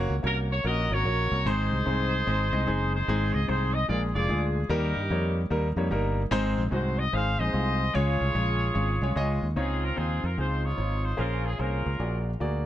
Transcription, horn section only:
0.26 A#4
0.52 C#5
0.67 F#4 A#4 D#5
0.94 F#4 A#4 C#5
1.48 D#4 G#4 C5
2.95 D#4 G#4 C5
3.34 D#5
3.48 C5
3.73 D#5
3.89 F4 G#4 D5
4.15 F4 G#4 D5
4.69 D#4 G4 A#4
6.73 C5
6.99 D#5
7.14 G#4 C5 F5
7.39 G#4 C5 D#5
7.95 F4 G#4 C#5
9.56 C4 F4 G#4
9.84 A#4
9.97 G#4
10.24 A#4
10.39 D#4 F4 C5
10.65 F4 G#4 C#5
11.05 C5
11.19 C#4 F4 A#4
11.46 G#4
11.60 C#4 F4 A#4

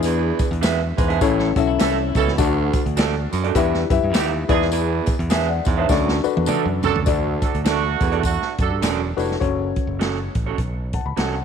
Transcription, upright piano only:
Already playing: D4 E4 G#4 B4
1.21 C#4 E4 A4 C#5
1.57 C#4 E4 A4 E5
2.38 D4 F#4 A4 D5
3.55 E4 G4 B4 E5
3.90 E4 G4 B4 E5
4.49 E4 G#4 B4 D5
5.31 E5 G#5
5.48 D5 F#5
5.77 C#5 E5
5.89 D4 F#4 A4 D5
6.24 D4 F#4 A4 B4
7.06 D4 F#4 A4 D5
9.17 D4 F#4 A4 B4
9.40 C#4 F#4 A4 C#5
10.94 F#5 A5
11.06 B5
11.17 F#5 A5
11.35 F#5

